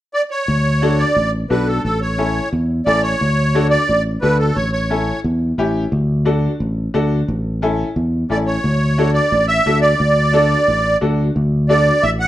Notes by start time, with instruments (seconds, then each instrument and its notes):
0.14 accordion D5
0.31 accordion C#5
0.48 fingered electric bass D2
0.82 upright piano D4 F#4 A4
0.99 accordion D5
1.16 fingered electric bass A1
1.50 fingered electric bass B1, upright piano D4 F#4 A4, accordion B4
1.67 accordion A4
1.84 fingered electric bass A1, accordion A4
2.01 accordion C#5
2.18 upright piano C#4 E4 A4
2.53 fingered electric bass E2
2.86 fingered electric bass A1, upright piano C#4 E4 A4, accordion D5
3.03 accordion C#5
3.21 fingered electric bass D2
3.55 upright piano D4 F#4 A4
3.70 accordion D5
3.89 fingered electric bass A1
4.21 fingered electric bass D2, upright piano D4 F#4 A4, accordion B4
4.39 accordion A4
4.55 fingered electric bass A1, accordion C#5
4.72 accordion C#5
4.90 upright piano C#4 E4 A4
5.24 fingered electric bass E2
5.58 fingered electric bass A1, upright piano C#4 E4 G4
5.92 fingered electric bass D2
6.25 upright piano D4 F#4 A4
6.60 fingered electric bass A1
6.94 fingered electric bass D2, upright piano D4 F#4 A4
7.28 fingered electric bass A1
7.62 upright piano C#4 E4 A4
7.96 fingered electric bass E2
8.30 fingered electric bass A1, upright piano C#4 E4 A4, accordion D5
8.47 accordion C#5
8.64 fingered electric bass D2
8.98 upright piano D4 F#4 A4
9.14 accordion D5
9.32 fingered electric bass A1
9.48 accordion E5
9.66 fingered electric bass D2, upright piano D4 F#4 A4
9.81 accordion D5
10.00 fingered electric bass D2
10.33 upright piano D4 F#4 A4
10.68 fingered electric bass A1
11.01 fingered electric bass D2, upright piano D4 F#4 A4
11.36 fingered electric bass D2
11.69 upright piano D4 F#4 A4, accordion D5
12.03 fingered electric bass A1, accordion E5
12.20 accordion F#5